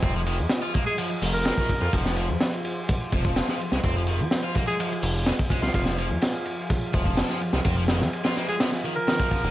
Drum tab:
RD |x-x-x-x-xx--x-x-|x-x-x-x-x-x-x-x-|x-x-x-x-xx--x-x-|x-x-x-x-x-x-x-x-|
HH |----------o-----|----------------|----------o-----|----------------|
SD |----o-------o---|-o--o-------oo-o|----o-------o--o|-o--o-------oo-o|
BD |o-----o------oo-|o-------o-oo----|o-----o------oo-|o-------o-oo----|

RD |x-x-xx-xx-x-x-x-|
HH |----------------|
SD |--oo-oo-oo--o---|
BD |o------------oo-|